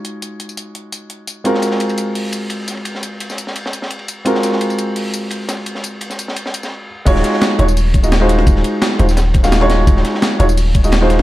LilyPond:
<<
  \new Staff \with { instrumentName = "Grand piano" } { \time 4/4 \key ees \dorian \tempo 4 = 171 <aes ees' f' ges' des''>1 | <aes c' f' ges' bes'>1~ | <aes c' f' ges' bes'>1 | <aes c' f' ges' bes'>1~ |
<aes c' f' ges' bes'>2.~ <aes c' f' ges' bes'>8 r8 | <aes ees' f' ges' des''>4. <aes ees' f' ges' des''>16 r4 <aes ees' f' ges' ees''>16 r16 <aes ees' f' ges' c''>8.~ | <aes ees' f' ges' c''>4. <aes ees' f' ges' c''>16 r4 <aes ees' f' ges' f''>8 <aes ees' f' ges' des''>8.~ | <aes ees' f' ges' des''>4. <aes ees' f' ges' des''>16 r4 <aes ees' f' ges' ees''>16 r16 <aes ees' f' ges' c''>8. | }
  \new Staff \with { instrumentName = "808-style bass" } { \clef bass \time 4/4 \key ees \dorian r1 | r1 | r1 | r1 |
r1 | ees,,8 r4 ees,,2~ ees,,8 | ees,,8 r4 ees,,2~ ees,,8 | ees,,8 r4 ees,,2~ ees,,8 | }
  \new DrumStaff \with { instrumentName = "Drums" } \drummode { \time 4/4 hh8 <hh tamb>8 hh16 tamb16 <hh tamb>8 hh8 <hh tamb>8 hh8 <hh tamb>8 | <hh cymr>16 sn16 <hh cymr sn tamb>16 sn16 <hh cymr>16 <cymr tamb>16 <hh cymr tamb>8 <hh hho>8 <hh cymr tamb>8 <hh cymr>8 <hh cymr sn tamb>16 cymr16 | <hh cymr>16 sn16 <hh cymr tamb>8 <hh cymr>16 <sn tamb>16 <hh cymr tamb>16 sn16 <hh cymr>16 sn16 <hh cymr tamb>16 sn16 <hh cymr>16 cymr16 <hh cymr tamb>8 | <hh cymr>16 sn16 <hh cymr sn tamb>16 sn16 <hh cymr>16 <cymr tamb>16 <hh cymr tamb>8 <hh hho>8 <hh cymr tamb>8 <hh cymr>8 <hh cymr sn tamb>16 cymr16 |
<hh cymr>16 sn16 <hh cymr tamb>8 <hh cymr>16 <sn tamb>16 <hh cymr tamb>16 sn16 <hh cymr>16 sn16 <hh cymr tamb>16 <sn tamb>16 r4 | <cymc hh bd cymr tamb>16 sn16 <hh cymr sn>16 sn16 <hh cymr sn tamb>16 cymr16 <hh cymr>16 tamb16 <hh hho tamb>8 <hh bd cymr>16 tamb16 <hh cymr sn tamb>8 <hh cymr sn>16 <cymr sn>16 | <hh bd cymr tamb>16 sn16 <hh cymr>8 <hh cymr sn tamb>16 sn16 <hh cymr>16 <sn tamb>16 <hh cymr sn tamb>8 <hh bd cymr sn>16 <cymr sn tamb>16 <hh sn tamb>16 <cymr sn>16 <hh cymr sn>8 | <hh bd cymr tamb>16 sn16 <hh cymr sn>16 sn16 <hh cymr sn tamb>16 cymr16 <hh cymr>16 tamb16 <hh hho tamb>8 <hh bd cymr>16 tamb16 <hh cymr sn tamb>8 <hh cymr sn>16 cymr16 | }
>>